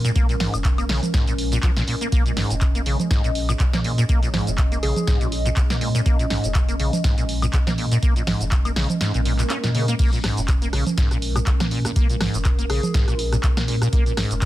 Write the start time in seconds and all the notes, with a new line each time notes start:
Already playing: A#2 G#3 C#4 A#4
0.05 A#2, closed hi-hat, shaker
0.15 A#1 A#3, kick, closed hi-hat, shaker
0.29 A#2, closed hi-hat, shaker
0.40 G#2, snare, open hi-hat, low conga
0.54 F1 A#2, closed hi-hat, high woodblock, shaker
0.65 kick, clap, closed hi-hat, shaker
0.78 A#3, closed hi-hat, high woodblock, shaker
0.89 A#1 C#3, snare, open hi-hat
1.03 closed hi-hat, low conga, shaker
1.14 G#2, kick, snare, closed hi-hat, shaker
1.27 A#1 A#2, closed hi-hat, shaker
1.38 open hi-hat
1.52 A#2, closed hi-hat, shaker
1.63 F3, kick, clap, closed hi-hat, shaker
1.77 A#1 A#2, snare, closed hi-hat, shaker
1.88 A#2, open hi-hat
2.01 A#3, closed hi-hat, shaker
2.12 A#1 A#3 D#5, kick, closed hi-hat, shaker
2.26 A#2, closed hi-hat, shaker
2.37 G#2, snare, open hi-hat
2.50 F1 A#2, closed hi-hat, shaker
2.61 kick, clap, closed hi-hat, shaker
2.75 A#3, closed hi-hat, shaker
2.86 A#1 C#3, open hi-hat
3.00 closed hi-hat, low conga, shaker
3.11 G#2, kick, snare, closed hi-hat, shaker
3.24 A#1 A#2, closed hi-hat, shaker
3.35 open hi-hat
3.49 A#2, closed hi-hat, high woodblock, shaker
3.60 C#3, kick, clap, closed hi-hat, shaker
3.73 A#2 A#3, snare, closed hi-hat, low conga, shaker
3.84 A#2, open hi-hat
3.98 A#2, closed hi-hat, shaker
4.09 A#1 A#3, kick, closed hi-hat, shaker
4.22 A#2, closed hi-hat, shaker
4.34 G#2, snare, open hi-hat, low conga
4.47 F1 A#2, closed hi-hat, shaker
4.58 kick, clap, closed hi-hat, shaker
4.72 A#3, closed hi-hat, shaker
4.83 A#1 C#3 G#4, open hi-hat
4.96 closed hi-hat, low conga, shaker
5.07 G#2, kick, snare, closed hi-hat, shaker
5.21 A#1 A#2, closed hi-hat, shaker
5.32 open hi-hat
5.45 A#2, closed hi-hat, shaker
5.56 C#3, kick, clap, closed hi-hat, shaker
5.70 A#2 A#3, snare, closed hi-hat, shaker
5.81 A#2, open hi-hat
5.95 A#2, closed hi-hat, shaker
6.06 A#1 A#3, kick, closed hi-hat, shaker
6.19 A#2, closed hi-hat, shaker
6.30 G#2, snare, open hi-hat
6.44 F1 A#2, closed hi-hat, shaker
6.55 kick, clap, closed hi-hat, shaker
6.69 A#3, closed hi-hat, shaker
6.80 A#1 C#3, open hi-hat
6.93 closed hi-hat, low conga, shaker
7.04 G#2, kick, snare, closed hi-hat, shaker
7.18 A#1 A#2, closed hi-hat, shaker
7.29 open hi-hat
7.42 A#2, closed hi-hat, high woodblock, shaker
7.53 C#3, kick, clap, closed hi-hat, shaker
7.67 A#2 A#3, snare, closed hi-hat, low conga, shaker
7.78 A#2, open hi-hat
7.91 A#2, closed hi-hat, shaker
8.02 A#1 A#3, kick, closed hi-hat, shaker
8.16 A#2, closed hi-hat, shaker
8.27 G#2, snare, open hi-hat, low conga
8.41 F1 A#2, closed hi-hat, shaker
8.51 kick, clap, closed hi-hat, shaker
8.65 A#3, closed hi-hat, high woodblock, shaker
8.76 A#1 C#3, snare, open hi-hat
8.90 closed hi-hat, low conga, shaker
9.01 G#2, snare, closed hi-hat, swell, shaker
9.14 A#1 A#2, closed hi-hat, shaker
9.25 A#2, open hi-hat
9.39 A#2, clap, closed hi-hat, shaker
9.50 C#4, clap, closed hi-hat, shaker
9.64 A#2, snare, closed hi-hat, shaker
9.75 C#3, open hi-hat
9.88 A#3, closed hi-hat, shaker
9.99 A#1 A#3 A#4, kick, closed hi-hat, crash, shaker
10.13 A#2, closed hi-hat, shaker
10.24 G#2, cross-stick, snare, open hi-hat
10.37 F1 A#2, closed hi-hat, shaker
10.48 kick, cross-stick, clap, closed hi-hat, shaker
10.62 A#3, closed hi-hat, shaker
10.73 A#1 C#3, cross-stick, open hi-hat
10.87 closed hi-hat, low conga, shaker
10.97 G#2, kick, snare, closed hi-hat, shaker
11.11 A#1 A#2, cross-stick, closed hi-hat, shaker
11.22 open hi-hat
11.36 A#2, cross-stick, closed hi-hat, high woodblock, shaker
11.46 C#3, kick, clap, closed hi-hat, shaker
11.60 A#2 A#3, cross-stick, snare, closed hi-hat, low conga, shaker
11.71 A#2, open hi-hat
11.85 A#2, cross-stick, closed hi-hat, shaker
11.96 A#1 A#3, kick, closed hi-hat, shaker
12.10 A#2, closed hi-hat, shaker
12.21 G#2, cross-stick, snare, open hi-hat, low conga
12.34 F1 A#2, closed hi-hat, shaker
12.45 kick, cross-stick, clap, closed hi-hat, shaker
12.59 A#3, closed hi-hat, shaker
12.70 A#1 C#3 G#4, cross-stick, open hi-hat
12.83 closed hi-hat, low conga, shaker
12.94 G#2, kick, snare, closed hi-hat, shaker
13.08 A#1 A#2, cross-stick, closed hi-hat, shaker
13.19 open hi-hat
13.32 A#2, cross-stick, closed hi-hat, shaker
13.43 C#3, kick, clap, closed hi-hat, shaker
13.57 A#2 A#3, cross-stick, snare, closed hi-hat, shaker
13.68 A#2, open hi-hat
13.82 A#2, cross-stick, closed hi-hat, shaker
13.93 A#1 A#3, kick, closed hi-hat, shaker
14.06 A#2, closed hi-hat, shaker
14.17 G#2, cross-stick, snare, open hi-hat
14.31 F1 A#2, closed hi-hat, shaker
14.42 kick, cross-stick, clap, closed hi-hat